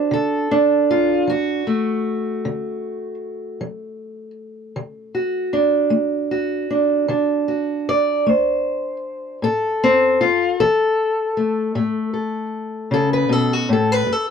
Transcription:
Already playing: D4 F#4 C5
0.11 D3 A4
0.51 D4
0.91 F4
1.27 F#3 F#4
1.67 A3
2.45 D3
3.61 F#3
4.76 D3
5.15 F#4
5.53 D4
5.90 A3
6.31 F#4
6.70 D4
7.08 D3 D4
7.48 F#4
7.89 D5
8.26 A3 C5
9.42 A2 A4
9.84 C4
10.21 F4
10.60 E3 A4
11.37 A3
11.75 A2 A3
12.14 A4
12.91 C#3 A4
13.13 B4
13.29 B2 A4
13.53 F#4
13.69 A2 A4
13.92 B4
14.07 G2
14.12 A4

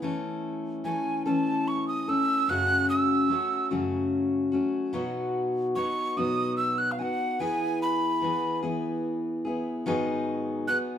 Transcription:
0.02 E3 A3 C#4 A4
0.84 E3 A3 C#4 A4 G#5
1.26 E3 A3 C#4 A4 A5
1.68 C#6
1.88 D#6
2.08 A3 C#4 A4 E6
2.49 F#2 C#3 F#3 A3 C#4 F#4 F#6
2.90 E6
3.29 F#3 A3 C#4 F#4
3.71 F#2 C#3 F#3 A3 C#4 F#4
4.52 F#3 A3 C#4 F#4
4.93 B2 F#3 B3 D#4 F#4
5.75 F#3 B3 D#4 F#4 C#6
6.17 B2 F#3 B3 D#4 F#4 D#6
6.57 E6
6.78 F#6
6.92 F5
6.98 B3 D#4 F#4 F#5 G#5
7.39 E3 B3 E4 G#4 G#5
7.82 B5
8.21 E3 B3 E4 G#4
8.63 E3 B3 E4 G#4
9.45 B3 E4 G#4
9.86 G#2 D#3 F#3 B3 D#4 G#4
10.67 F#3 B3 D#4 G#4 F#6

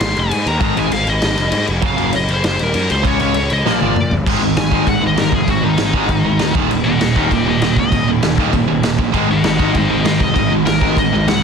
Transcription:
Already playing: C6
0.00 G#1, snare, crash
0.16 F1 G#5, crash
0.31 G#2, crash
0.46 D#2 A#5, crash
0.60 G#1 G#2 D#3 G#3, kick, crash
0.65 A#5
0.76 G#1 G#2 D#3 G#3 G#5, crash
0.92 G#1 F5, crash
1.07 G#1 D#5, crash
1.22 G#1, snare, crash
1.37 F1, crash
1.52 G#2, crash
1.67 F1, crash
1.82 F#1 F#2 C#3 F#3, kick, crash
1.86 F5
1.98 F#1 F#2 C#3 F#3, crash
2.13 F#1 D#5, crash
2.28 F#1 C5, crash
2.44 F#1 C5, snare, crash
2.59 D#1, crash
2.63 A#4
2.74 F#2, crash
2.90 C#2 C5, crash
3.04 C#2 C#3 G#3 C#4 C#5, kick, crash
3.19 C#2 C#3 G#3 C#4 C#5, crash
3.34 C#2, crash
3.50 C#2 D#5, crash
3.66 A#1 A#2 F3 A#3 D5, snare
3.81 G#1 A#2 F3 A#3, high tom
3.96 A#2, mid tom
4.11 G1, floor tom
4.26 G#1 G#2 D#3 G#3, kick, crash
4.42 G#1 G#2 D#3
4.57 G#1 G#2 D#3 G#5, snare, crash
4.72 G#1 G#2 D#3 G#3, kick
4.87 G#1 G#2 D#3 F#5, kick, crash
5.03 G#1 G#2 D#3
5.07 D#5
5.17 G#1 G#2 D#3 A#4, snare, crash
5.32 F1 G#2 D#3 G#4, kick
5.48 G#1 G#2 D#3 F#4, kick, crash
5.64 G#1 G#2 D#3 D#4
5.78 G#1 G#2 D#3, snare, crash
5.94 G#1 G#2 D#3 G#3, kick
6.09 G#1 G#2 D#3, kick, crash
6.25 G#1 G#2 D#3
6.39 D2 G#2 D#3, snare, crash
6.55 D#1 D#2 A#2 D#3, kick
6.70 D#1 D#2 A#2, crash
6.84 D#1 D#2 A#2 D#5 F#5
7.01 D#1 D#2 A#2 D#5 F#5, snare, crash
7.16 D#1 D#2 A#2 D#3 D#5 F#5, kick
7.31 D#1 D#2 A#2 G4 D#5, kick, crash
7.47 D#1 D#2 A#2 G4 D#5
7.62 D#1 D#2 A#2 G4 D#5, snare, crash
7.77 C#2 D#2 A#2 D#5, kick
7.92 D#1 D#2 A#2, kick, crash
8.07 D#1 D#2 A#2
8.22 D#1 D#2 A#2, snare, crash
8.37 D#1 D#2 A#2 D#3, kick
8.53 D#1 D#2 A#2, kick, crash
8.68 D#1 D#2 A#2
8.83 D#1 D#2 A#2, snare, crash
8.98 A#1 D#2 A#2, kick
9.14 G#1 G#2 D#3 G#3, kick, crash
9.29 G#1 G#2 D#3 D#5 F#5
9.44 G#1 G#2 D#3 D#5 F#5, snare, crash
9.59 G#1 G#2 D#3 G#3 D#5 F#5, kick
9.75 G#1 G#2 D#3 C5 D#5, kick, crash
9.88 G#1 G#2 D#3 C5 D#5
10.05 G#1 G#2 D#3 C5 D#5, snare, crash
10.20 F1 G#2 D#3 D#5, kick
10.35 G#1 G#2 D#3, kick, crash
10.51 G#1 G#2 D#3
10.66 G#1 G#2 D#3 A#4, snare, crash
10.81 G#1 G#2 D#3 G#3, kick
10.97 G#1 G#2 D#3 D#5, kick, crash
11.12 G#1 G#2 D#3
11.27 C#2 G#2 D#3 F#5, snare, crash

